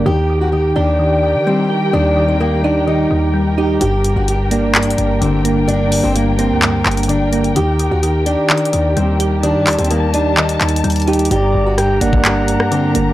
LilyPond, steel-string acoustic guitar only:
\new Staff \with { instrumentName = "Steel-string acoustic guitar" } { \time 4/4 \key g \minor \tempo 4 = 128 g'8. fis'16 g'8 d'4. c'8 r8 | d'8. c'16 bes8 d'8 ees'4. g'8 | g'8. fis'16 g'8 d'4. c'8 r8 | d'8. c'16 bes8 c'4. d'8 r8 |
g'8. fis'16 g'8 d'4. c'8 r8 | d'8. c'16 bes8 d'8 ees'4. g'8 | g'8. fis'16 g'8 d'4. c'8 r8 | }